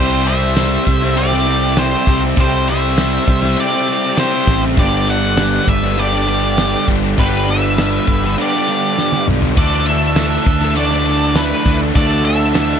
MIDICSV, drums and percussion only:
0, 0, Header, 1, 2, 480
1, 0, Start_track
1, 0, Tempo, 601805
1, 1897, Time_signature, 4, 2, 24, 8
1, 5253, Tempo, 597015
1, 10247, End_track
2, 0, Start_track
2, 0, Title_t, "Drums"
2, 216, Note_on_c, 9, 51, 73
2, 295, Note_off_c, 9, 51, 0
2, 447, Note_on_c, 9, 54, 104
2, 451, Note_on_c, 9, 38, 106
2, 451, Note_on_c, 9, 51, 105
2, 526, Note_off_c, 9, 54, 0
2, 530, Note_off_c, 9, 51, 0
2, 531, Note_off_c, 9, 38, 0
2, 692, Note_on_c, 9, 51, 77
2, 693, Note_on_c, 9, 36, 84
2, 772, Note_off_c, 9, 51, 0
2, 773, Note_off_c, 9, 36, 0
2, 932, Note_on_c, 9, 51, 110
2, 1012, Note_off_c, 9, 51, 0
2, 1052, Note_on_c, 9, 38, 32
2, 1132, Note_off_c, 9, 38, 0
2, 1168, Note_on_c, 9, 51, 75
2, 1248, Note_off_c, 9, 51, 0
2, 1410, Note_on_c, 9, 51, 96
2, 1411, Note_on_c, 9, 38, 108
2, 1414, Note_on_c, 9, 54, 107
2, 1490, Note_off_c, 9, 51, 0
2, 1491, Note_off_c, 9, 38, 0
2, 1493, Note_off_c, 9, 54, 0
2, 1650, Note_on_c, 9, 51, 75
2, 1651, Note_on_c, 9, 38, 37
2, 1652, Note_on_c, 9, 36, 92
2, 1730, Note_off_c, 9, 51, 0
2, 1731, Note_off_c, 9, 38, 0
2, 1732, Note_off_c, 9, 36, 0
2, 1888, Note_on_c, 9, 51, 104
2, 1892, Note_on_c, 9, 36, 116
2, 1968, Note_off_c, 9, 51, 0
2, 1972, Note_off_c, 9, 36, 0
2, 2134, Note_on_c, 9, 51, 69
2, 2214, Note_off_c, 9, 51, 0
2, 2375, Note_on_c, 9, 38, 113
2, 2375, Note_on_c, 9, 51, 96
2, 2378, Note_on_c, 9, 54, 95
2, 2454, Note_off_c, 9, 51, 0
2, 2455, Note_off_c, 9, 38, 0
2, 2458, Note_off_c, 9, 54, 0
2, 2612, Note_on_c, 9, 51, 72
2, 2613, Note_on_c, 9, 36, 86
2, 2692, Note_off_c, 9, 51, 0
2, 2693, Note_off_c, 9, 36, 0
2, 2731, Note_on_c, 9, 38, 35
2, 2811, Note_off_c, 9, 38, 0
2, 2843, Note_on_c, 9, 51, 105
2, 2923, Note_off_c, 9, 51, 0
2, 3091, Note_on_c, 9, 51, 72
2, 3171, Note_off_c, 9, 51, 0
2, 3329, Note_on_c, 9, 51, 103
2, 3330, Note_on_c, 9, 38, 100
2, 3330, Note_on_c, 9, 54, 98
2, 3409, Note_off_c, 9, 51, 0
2, 3410, Note_off_c, 9, 38, 0
2, 3410, Note_off_c, 9, 54, 0
2, 3567, Note_on_c, 9, 51, 84
2, 3568, Note_on_c, 9, 38, 34
2, 3569, Note_on_c, 9, 36, 96
2, 3647, Note_off_c, 9, 51, 0
2, 3648, Note_off_c, 9, 38, 0
2, 3649, Note_off_c, 9, 36, 0
2, 3805, Note_on_c, 9, 51, 101
2, 3807, Note_on_c, 9, 36, 122
2, 3885, Note_off_c, 9, 51, 0
2, 3887, Note_off_c, 9, 36, 0
2, 4044, Note_on_c, 9, 51, 80
2, 4124, Note_off_c, 9, 51, 0
2, 4282, Note_on_c, 9, 54, 84
2, 4286, Note_on_c, 9, 51, 97
2, 4287, Note_on_c, 9, 38, 122
2, 4362, Note_off_c, 9, 54, 0
2, 4366, Note_off_c, 9, 51, 0
2, 4367, Note_off_c, 9, 38, 0
2, 4527, Note_on_c, 9, 36, 89
2, 4529, Note_on_c, 9, 51, 72
2, 4607, Note_off_c, 9, 36, 0
2, 4609, Note_off_c, 9, 51, 0
2, 4648, Note_on_c, 9, 38, 37
2, 4728, Note_off_c, 9, 38, 0
2, 4766, Note_on_c, 9, 51, 98
2, 4846, Note_off_c, 9, 51, 0
2, 5011, Note_on_c, 9, 51, 71
2, 5090, Note_off_c, 9, 51, 0
2, 5241, Note_on_c, 9, 54, 104
2, 5248, Note_on_c, 9, 38, 107
2, 5248, Note_on_c, 9, 51, 99
2, 5322, Note_off_c, 9, 54, 0
2, 5328, Note_off_c, 9, 51, 0
2, 5329, Note_off_c, 9, 38, 0
2, 5489, Note_on_c, 9, 36, 89
2, 5491, Note_on_c, 9, 51, 76
2, 5492, Note_on_c, 9, 38, 36
2, 5569, Note_off_c, 9, 36, 0
2, 5572, Note_off_c, 9, 38, 0
2, 5572, Note_off_c, 9, 51, 0
2, 5730, Note_on_c, 9, 51, 99
2, 5731, Note_on_c, 9, 36, 119
2, 5810, Note_off_c, 9, 51, 0
2, 5811, Note_off_c, 9, 36, 0
2, 5971, Note_on_c, 9, 51, 66
2, 6051, Note_off_c, 9, 51, 0
2, 6215, Note_on_c, 9, 51, 95
2, 6216, Note_on_c, 9, 38, 116
2, 6216, Note_on_c, 9, 54, 96
2, 6296, Note_off_c, 9, 38, 0
2, 6296, Note_off_c, 9, 51, 0
2, 6296, Note_off_c, 9, 54, 0
2, 6447, Note_on_c, 9, 51, 71
2, 6453, Note_on_c, 9, 36, 85
2, 6528, Note_off_c, 9, 51, 0
2, 6534, Note_off_c, 9, 36, 0
2, 6581, Note_on_c, 9, 38, 36
2, 6661, Note_off_c, 9, 38, 0
2, 6696, Note_on_c, 9, 51, 104
2, 6776, Note_off_c, 9, 51, 0
2, 6935, Note_on_c, 9, 51, 75
2, 7016, Note_off_c, 9, 51, 0
2, 7180, Note_on_c, 9, 54, 106
2, 7181, Note_on_c, 9, 38, 63
2, 7261, Note_off_c, 9, 38, 0
2, 7261, Note_off_c, 9, 54, 0
2, 7294, Note_on_c, 9, 48, 72
2, 7374, Note_off_c, 9, 48, 0
2, 7416, Note_on_c, 9, 45, 99
2, 7497, Note_off_c, 9, 45, 0
2, 7532, Note_on_c, 9, 43, 87
2, 7612, Note_off_c, 9, 43, 0
2, 7650, Note_on_c, 9, 49, 96
2, 7654, Note_on_c, 9, 36, 121
2, 7731, Note_off_c, 9, 49, 0
2, 7735, Note_off_c, 9, 36, 0
2, 7885, Note_on_c, 9, 51, 75
2, 7966, Note_off_c, 9, 51, 0
2, 8127, Note_on_c, 9, 51, 116
2, 8128, Note_on_c, 9, 38, 112
2, 8135, Note_on_c, 9, 54, 97
2, 8208, Note_off_c, 9, 51, 0
2, 8209, Note_off_c, 9, 38, 0
2, 8216, Note_off_c, 9, 54, 0
2, 8367, Note_on_c, 9, 51, 75
2, 8372, Note_on_c, 9, 36, 95
2, 8447, Note_off_c, 9, 51, 0
2, 8452, Note_off_c, 9, 36, 0
2, 8493, Note_on_c, 9, 38, 35
2, 8573, Note_off_c, 9, 38, 0
2, 8606, Note_on_c, 9, 51, 104
2, 8687, Note_off_c, 9, 51, 0
2, 8732, Note_on_c, 9, 38, 35
2, 8813, Note_off_c, 9, 38, 0
2, 8847, Note_on_c, 9, 51, 74
2, 8927, Note_off_c, 9, 51, 0
2, 9087, Note_on_c, 9, 51, 100
2, 9088, Note_on_c, 9, 38, 100
2, 9088, Note_on_c, 9, 54, 100
2, 9167, Note_off_c, 9, 51, 0
2, 9168, Note_off_c, 9, 38, 0
2, 9169, Note_off_c, 9, 54, 0
2, 9330, Note_on_c, 9, 36, 94
2, 9332, Note_on_c, 9, 51, 81
2, 9333, Note_on_c, 9, 38, 33
2, 9410, Note_off_c, 9, 36, 0
2, 9413, Note_off_c, 9, 51, 0
2, 9414, Note_off_c, 9, 38, 0
2, 9569, Note_on_c, 9, 36, 113
2, 9569, Note_on_c, 9, 51, 96
2, 9649, Note_off_c, 9, 51, 0
2, 9650, Note_off_c, 9, 36, 0
2, 9807, Note_on_c, 9, 51, 69
2, 9887, Note_off_c, 9, 51, 0
2, 10041, Note_on_c, 9, 54, 85
2, 10049, Note_on_c, 9, 51, 101
2, 10050, Note_on_c, 9, 38, 125
2, 10121, Note_off_c, 9, 54, 0
2, 10129, Note_off_c, 9, 51, 0
2, 10130, Note_off_c, 9, 38, 0
2, 10247, End_track
0, 0, End_of_file